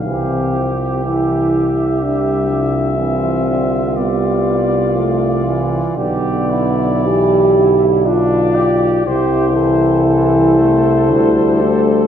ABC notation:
X:1
M:3/4
L:1/16
Q:1/4=60
K:C
V:1 name="Cornet"
f3 z e8- | e4 d8 | d8 d4 | c4 c8 |]
V:2 name="Flugelhorn"
G8- G3 z | F12 | G2 E6 D2 G2 | G2 A8- A2 |]
V:3 name="Euphonium"
C4 E4 D4 | C4 B,4 A,2 z2 | B,4 G4 F4 | E8- E2 A,2 |]
V:4 name="Trombone" clef=bass
E,2 F,2 E,3 z G,2 F,2 | E,2 D,2 G,4 F,2 E,2 | D,4 E,2 D,4- D, z | C,2 E,2 E,2 A,2 G,4 |]
V:5 name="Tuba" clef=bass
C,,12- | C,,12 | B,,,12 | C,,8 D,,4 |]